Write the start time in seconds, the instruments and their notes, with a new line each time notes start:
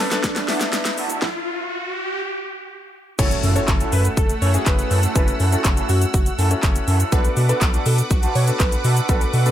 Already playing: supersaw synth A3 D4 B4, riser
0.11 grand piano B3 D4 A4, muted clean electric guitar stroke, snare, closed hi-hat, shaker
0.24 kick, snare, closed hi-hat, shaker
0.36 muted clean electric guitar stroke, snare, closed hi-hat, shaker
0.48 clean electric guitar A3 D4 F#4 A4, grand piano B3 D4 E4, snare, open hi-hat, shaker
0.60 muted clean electric guitar stroke, snare, closed hi-hat, shaker
0.73 muted clean electric guitar stroke, snare, closed hi-hat, shaker
0.85 muted clean electric guitar stroke, snare, closed hi-hat, shaker
0.97 clean electric guitar A3 D4 F#4 A4, open hi-hat, shaker
1.10 clean electric guitar A3 D4 F#4 A4, closed hi-hat, shaker
1.22 kick, snare
3.19 analog synth bass F#1, clean electric guitar F#3 C#4 E4 A4, supersaw synth A3 F#5 E6, grand piano C#4 E4 F#4 A4, digital synth lead C#5, kick, closed hi-hat, crash, impact, shaker
3.31 muted clean electric guitar stroke, closed hi-hat, shaker
3.43 analog synth bass F#2, clean electric guitar F#3 C#4 E4 A4, open hi-hat, shaker
3.55 clean electric guitar F#3 C#4 E4 A4, grand piano C#4 E4 F#4 A4, digital synth lead C#5, closed hi-hat, shaker
3.68 analog synth bass F#1, muted clean electric guitar stroke, kick, clap, closed hi-hat, shaker
3.80 clean electric guitar F#3 C#4 E4 A4, closed hi-hat, shaker
3.92 analog synth bass F#2, digital synth lead B4, muted clean electric guitar stroke, open hi-hat, shaker
4.05 muted clean electric guitar stroke, closed hi-hat, shaker
4.17 analog synth bass F#1, digital synth lead A4, kick, closed hi-hat, shaker
4.29 muted clean electric guitar stroke, closed hi-hat, shaker
4.42 analog synth bass F#2, clean electric guitar F#3 C#4 E4 A4, digital synth lead C#5, open hi-hat, shaker
4.54 grand piano C#4 E4 F#4 G#4, muted clean electric guitar stroke, closed hi-hat, shaker
4.66 analog synth bass F#1, digital synth lead B4, muted clean electric guitar stroke, kick, clap, closed hi-hat, shaker
4.79 muted clean electric guitar stroke, closed hi-hat, shaker
4.91 analog synth bass F#2, clean electric guitar F#3 C#4 E4 A4, open hi-hat, shaker
5.03 clean electric guitar F#3 C#4 E4 A4, closed hi-hat, shaker
5.15 analog synth bass F#1, clean electric guitar F#3 C#4 E4 A4, grand piano C#4 E4 F#4 A4, digital synth lead B4, kick, closed hi-hat, shaker
5.28 muted clean electric guitar stroke, closed hi-hat, shaker
5.40 analog synth bass F#2, clean electric guitar F#3 C#4 E4 A4, open hi-hat, shaker
5.52 clean electric guitar F#3 C#4 E4 A4, grand piano C#4 E4 F#4 A4, digital synth lead A4, closed hi-hat, shaker
5.65 analog synth bass F#1, muted clean electric guitar stroke, kick, clap, closed hi-hat, shaker
5.77 clean electric guitar F#3 C#4 E4 A4, closed hi-hat, shaker
5.89 analog synth bass F#2, digital synth lead F#4, muted clean electric guitar stroke, open hi-hat, shaker
6.01 muted clean electric guitar stroke, closed hi-hat, shaker
6.14 analog synth bass F#1, digital synth lead F#4, kick, closed hi-hat, shaker
6.26 muted clean electric guitar stroke, closed hi-hat, shaker
6.38 analog synth bass F#2, clean electric guitar F#3 C#4 E4 A4, digital synth lead A4, open hi-hat, shaker
6.51 grand piano C#4 E4 F#4 A4, muted clean electric guitar stroke, closed hi-hat, shaker
6.63 analog synth bass F#1, muted clean electric guitar stroke, kick, clap, closed hi-hat, shaker
6.75 muted clean electric guitar stroke, closed hi-hat, shaker
6.87 analog synth bass F#2, clean electric guitar F#3 C#4 E4 A4, open hi-hat, shaker
7.00 clean electric guitar F#3 C#4 E4 A4, closed hi-hat, shaker
7.12 analog synth bass B1, clean electric guitar A3 D4 F#4 A4, grand piano B3 D4 F#4 A4, digital synth lead B4, supersaw synth B4 F#5 D6, kick, closed hi-hat, shaker
7.24 muted clean electric guitar stroke, closed hi-hat, shaker
7.37 analog synth bass B2, clean electric guitar A3 D4 F#4 A4, open hi-hat, shaker
7.49 clean electric guitar A3 D4 F#4 A4, grand piano B3 D4 F#4 A4, digital synth lead B4, closed hi-hat, shaker
7.61 analog synth bass B1, muted clean electric guitar stroke, kick, clap, closed hi-hat, shaker
7.73 clean electric guitar A3 D4 F#4 A4, closed hi-hat, shaker
7.86 analog synth bass B2, digital synth lead A4, muted clean electric guitar stroke, open hi-hat, shaker
7.98 muted clean electric guitar stroke, closed hi-hat, shaker
8.10 analog synth bass B1, digital synth lead F#4, muted clean electric guitar stroke, kick, closed hi-hat, shaker
8.23 clean electric guitar A3 D4 F#4 A4, closed hi-hat, shaker
8.35 analog synth bass B2, clean electric guitar A3 D4 F#4 A4, digital synth lead C#5, open hi-hat, shaker
8.47 grand piano B3 D4 F#4 A4, muted clean electric guitar stroke, closed hi-hat, shaker
8.60 analog synth bass B1, digital synth lead B4, muted clean electric guitar stroke, kick, clap, closed hi-hat, shaker
8.72 muted clean electric guitar stroke, closed hi-hat, shaker
8.84 analog synth bass B2, clean electric guitar A3 D4 F#4 A4, open hi-hat, shaker
8.96 clean electric guitar A3 D4 F#4 A4, closed hi-hat, shaker
9.09 analog synth bass B1, clean electric guitar A3 D4 F#4 A4, grand piano B3 D4 F#4 A4, digital synth lead B4, kick, closed hi-hat, shaker
9.21 muted clean electric guitar stroke, closed hi-hat, shaker
9.33 analog synth bass B2, clean electric guitar A3 D4 F#4 A4, open hi-hat, shaker
9.45 clean electric guitar A3 D4 F#4 A4, grand piano B3 D4 F#4 B4, digital synth lead A4, closed hi-hat, shaker